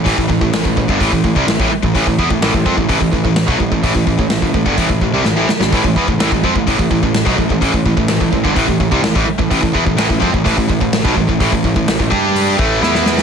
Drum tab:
HH |o---o---o---o---|o---o---o---o---|o---o---o-------|o---o---o---o---|
SD |----o-------o---|----o-------o---|----o-------o-oo|----o-------o---|
BD |oooo-ooooooo-o-o|oooo-ooooooo-ooo|oooo-oooooo-----|oooo-ooooooo-ooo|

HH |o---o---o---o---|o---o---o---o---|o---o---o-------|
SD |----o-------o---|----o-------o---|----o-------oooo|
BD |oooo-ooooooo-o-o|oooo-ooooooo-ooo|oooo-oo---o-----|